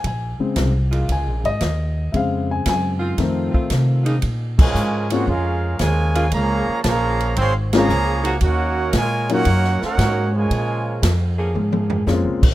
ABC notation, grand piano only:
X:1
M:4/4
L:1/8
Q:"Swing" 1/4=115
K:Bbm
V:1 name="Grand piano"
a z3 a e3 | [=ef] a a z4 z | z3 [A,B,CDF] z4 | z4 z [A,B,CDF] z2 |
z3 [G,B,DEF] z4 | z6 [A,B,CDF] z |]
V:2 name="Grand piano" clef=bass
z [D,A,C] z6 | [D,A,C]4 [E,=A,C]4 | z8 | z8 |
z8 | z8 |]